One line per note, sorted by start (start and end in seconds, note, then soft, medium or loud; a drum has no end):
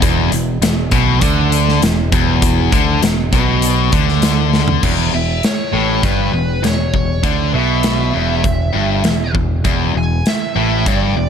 0.02 0.30 E1 medium
0.02 0.32 E2 loud
0.02 kick medium
0.02 closed hi-hat medium
0.32 0.60 E1 medium
0.32 0.57 E2 medium
0.32 closed hi-hat medium
0.62 0.90 E1 medium
0.62 0.86 E2 medium
0.62 snare loud
0.62 closed hi-hat medium
0.91 1.20 B1 medium
0.91 1.22 B2 loud
0.91 kick loud
0.91 closed hi-hat medium
1.21 1.79 D2 medium
1.21 1.81 D3 loud
1.21 kick loud
1.21 closed hi-hat medium
1.52 closed hi-hat medium
1.68 snare soft
1.82 2.10 E1 medium
1.82 2.06 E2 medium
1.82 snare loud
1.82 closed hi-hat medium
2.12 2.69 E1 medium
2.12 2.72 E2 loud
2.12 kick loud
2.12 closed hi-hat medium
2.42 kick loud
2.42 closed hi-hat loud
2.72 3.01 D2 medium
2.72 3.02 D3 medium
2.72 kick loud
2.72 closed hi-hat medium
3.02 3.31 E1 medium
3.02 3.26 E2 medium
3.02 snare loud
3.02 closed hi-hat loud
3.33 3.89 B1 medium
3.33 3.92 B2 loud
3.33 kick loud
3.33 closed hi-hat medium
3.62 closed hi-hat loud
3.92 4.79 D2 medium
3.92 4.82 D3 medium
3.92 kick loud
3.92 closed hi-hat medium
4.08 snare soft
4.22 snare loud
4.22 closed hi-hat medium
4.53 snare medium
4.68 floor tom medium
4.83 5.11 E1 medium
4.83 5.12 E2 loud
4.83 kick medium
4.83 crash medium
5.12 5.41 E1 medium
5.12 5.38 E2 medium
5.12 5.45 E5 medium
5.43 6.06 C#5 medium
5.43 snare loud
5.43 closed hi-hat medium
5.73 6.01 A1 medium
5.73 6.03 A2 medium
6.03 6.32 G1 medium
6.03 6.33 G2 loud
6.03 6.66 B4 medium
6.03 kick medium
6.03 closed hi-hat medium
6.32 6.61 E1 medium
6.32 6.58 E2 medium
6.62 6.91 E1 medium
6.62 6.88 E2 medium
6.62 7.20 C#5 medium
6.62 snare medium
6.62 closed hi-hat medium
6.94 7.22 E1 medium
6.94 7.18 E2 medium
6.94 kick medium
7.23 7.52 D2 medium
7.23 7.53 D3 loud
7.23 7.52 D5 medium
7.23 kick medium
7.23 closed hi-hat medium
7.53 8.10 B1 medium
7.53 8.13 B2 medium
7.53 9.32 E5 medium
7.83 snare medium
7.83 closed hi-hat medium
8.14 8.43 E1 medium
8.14 8.43 E2 medium
8.44 8.73 E1 medium
8.44 8.69 E2 medium
8.44 kick loud
8.44 closed hi-hat medium
8.73 9.03 G1 medium
8.73 9.03 G2 medium
9.04 9.33 E1 medium
9.04 9.29 E2 medium
9.04 snare medium
9.04 closed hi-hat medium
9.35 9.63 E1 medium
9.35 9.59 E2 medium
9.35 kick medium
9.65 9.93 E1 medium
9.65 9.94 E2 loud
9.65 kick medium
9.65 closed hi-hat medium
9.95 10.23 E1 medium
9.95 10.20 E2 medium
9.95 10.28 G#5 medium
10.26 10.88 E5 medium
10.26 snare loud
10.26 closed hi-hat medium
10.56 10.84 A1 medium
10.56 10.85 A2 medium
10.86 11.14 G1 medium
10.86 11.16 G2 loud
10.86 11.29 D5 medium
10.86 kick medium
10.86 closed hi-hat medium
11.17 11.29 E1 medium
11.17 11.29 E2 medium